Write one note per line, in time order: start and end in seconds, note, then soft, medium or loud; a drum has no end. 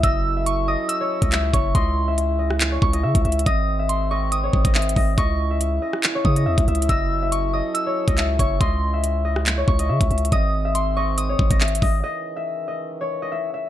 0.00 0.76 F#1 loud
0.00 1.73 F#3 medium
0.00 3.42 C#4 medium
0.00 3.42 E4 medium
0.00 1.73 A4 medium
0.00 1.00 C#5 medium
0.00 0.43 D#5 loud
0.00 0.44 E6 loud
0.00 kick loud
0.00 closed hi-hat medium
0.37 0.74 E5 medium
0.46 0.67 C#6 medium
0.46 closed hi-hat medium
0.68 1.21 D#5 medium
0.68 0.88 D#6 medium
0.89 1.49 E6 loud
0.89 closed hi-hat medium
1.01 1.53 C#5 medium
1.22 1.52 C#2 loud
1.22 1.38 D#5 medium
1.22 kick loud
1.22 closed hi-hat medium
1.32 1.81 E5 medium
1.32 clap loud
1.32 closed hi-hat medium
1.54 1.74 F#1 loud
1.54 2.71 C#5 medium
1.54 1.74 C#6 medium
1.54 kick medium
1.54 closed hi-hat medium
1.75 2.78 C#2 loud
1.75 3.45 C#3 medium
1.75 2.14 D#5 loud
1.75 2.15 C6 loud
1.75 kick loud
1.75 closed hi-hat medium
2.08 2.45 E5 medium
2.18 closed hi-hat medium
2.39 2.93 D#5 medium
2.51 cross-stick medium
2.61 clap loud
2.61 closed hi-hat medium
2.72 4.43 C#5 medium
2.82 3.05 C#2 loud
2.82 3.43 C#6 medium
2.82 kick loud
2.93 3.09 D#5 medium
2.93 closed hi-hat medium
3.03 3.14 C#3 loud
3.03 3.25 E5 medium
3.15 3.24 C#2 loud
3.15 kick loud
3.15 closed hi-hat medium
3.25 3.46 C#2 loud
3.25 3.52 E5 medium
3.25 closed hi-hat soft
3.32 closed hi-hat medium
3.39 closed hi-hat medium
3.46 4.50 G#1 loud
3.46 5.16 D#3 medium
3.46 5.16 G#3 medium
3.46 5.16 C4 medium
3.46 3.85 D#5 loud
3.46 3.87 D#6 loud
3.46 kick loud
3.46 closed hi-hat medium
3.79 4.17 E5 medium
3.89 4.09 C6 medium
3.89 closed hi-hat medium
4.11 4.64 D#5 medium
4.11 4.31 C#6 medium
4.32 5.14 D#6 medium
4.32 closed hi-hat medium
4.43 6.15 C#5 medium
4.53 4.64 G#1 loud
4.53 kick medium
4.65 4.95 G#1 loud
4.65 4.81 D#5 medium
4.65 kick loud
4.65 closed hi-hat medium
4.75 5.03 E5 medium
4.75 clap loud
4.75 closed hi-hat soft
4.82 closed hi-hat medium
4.89 closed hi-hat medium
4.96 5.17 G#1 loud
4.96 5.17 D#5 medium
4.96 kick medium
4.96 open hi-hat medium
5.18 5.79 C#2 loud
5.18 6.87 C#3 medium
5.18 10.28 C#4 medium
5.18 8.57 E4 medium
5.18 5.57 D#5 loud
5.18 5.58 C#6 loud
5.18 kick loud
5.18 closed hi-hat medium
5.51 5.88 E5 medium
5.61 closed hi-hat medium
5.82 6.36 D#5 medium
5.93 cross-stick medium
6.03 clap loud
6.03 closed hi-hat medium
6.15 7.86 C#5 medium
6.25 6.48 C#3 loud
6.25 6.85 D#6 medium
6.25 kick medium
6.36 6.52 D#5 medium
6.36 closed hi-hat medium
6.46 6.57 E2 loud
6.46 6.68 E5 medium
6.58 6.67 C#2 loud
6.58 kick medium
6.58 closed hi-hat medium
6.68 6.88 C#2 loud
6.68 6.95 E5 medium
6.68 closed hi-hat soft
6.75 closed hi-hat medium
6.82 closed hi-hat medium
6.89 7.62 F#1 loud
6.89 8.59 F#3 medium
6.89 8.59 A4 medium
6.89 7.28 D#5 loud
6.89 7.29 E6 loud
6.89 kick loud
6.89 closed hi-hat medium
7.22 7.60 E5 medium
7.32 7.52 C#6 medium
7.32 closed hi-hat medium
7.53 8.07 D#5 loud
7.53 7.74 D#6 medium
7.74 8.35 E6 loud
7.74 closed hi-hat medium
7.86 8.39 C#5 medium
8.08 8.38 C#2 loud
8.08 8.24 D#5 medium
8.08 kick loud
8.08 closed hi-hat medium
8.18 8.67 E5 medium
8.18 clap loud
8.18 closed hi-hat medium
8.39 8.60 F#1 loud
8.39 9.57 C#5 medium
8.39 8.60 C#6 medium
8.39 kick medium
8.39 closed hi-hat medium
8.61 9.64 C#2 loud
8.61 10.30 C#3 medium
8.61 10.30 E4 medium
8.61 9.00 D#5 loud
8.61 9.01 C6 loud
8.61 kick loud
8.61 closed hi-hat medium
8.94 9.31 E5 medium
9.04 closed hi-hat medium
9.25 9.79 D#5 medium
9.36 cross-stick medium
9.46 clap loud
9.46 closed hi-hat medium
9.58 11.29 C#5 medium
9.68 9.91 C#2 loud
9.68 10.28 C#6 medium
9.68 kick medium
9.79 9.95 D#5 medium
9.79 closed hi-hat medium
9.89 10.00 C#3 loud
9.89 10.10 E5 medium
10.01 10.10 C#2 loud
10.01 kick medium
10.01 closed hi-hat medium
10.11 10.31 C#2 loud
10.11 10.38 E5 medium
10.11 closed hi-hat soft
10.18 closed hi-hat medium
10.25 closed hi-hat medium
10.32 11.35 G#1 loud
10.32 11.86 D#3 medium
10.32 11.86 G#3 medium
10.32 11.86 C4 medium
10.32 10.71 D#5 loud
10.32 10.72 D#6 loud
10.32 kick loud
10.32 closed hi-hat medium
10.65 11.03 E5 medium
10.75 10.95 C6 medium
10.75 closed hi-hat medium
10.97 11.50 D#5 loud
10.97 11.17 C#6 medium
11.18 11.99 D#6 medium
11.18 closed hi-hat medium
11.29 13.00 C#5 medium
11.39 11.50 G#1 loud
11.39 kick medium
11.51 11.81 G#1 loud
11.51 11.67 D#5 medium
11.51 kick loud
11.51 closed hi-hat medium
11.61 11.88 E5 medium
11.61 clap loud
11.61 closed hi-hat soft
11.68 closed hi-hat medium
11.75 closed hi-hat medium
11.82 12.03 G#1 loud
11.82 12.03 D#5 medium
11.82 kick medium
11.82 open hi-hat medium
12.03 13.69 C#2 medium
12.03 13.69 C#3 medium
12.03 13.69 D#3 medium
12.03 13.69 E3 medium
12.03 12.42 D#5 loud
12.36 12.74 E5 medium
12.68 13.22 D#5 medium
13.01 13.69 C#5 medium
13.22 13.38 D#5 medium
13.32 13.53 E5 medium
13.54 13.69 E5 medium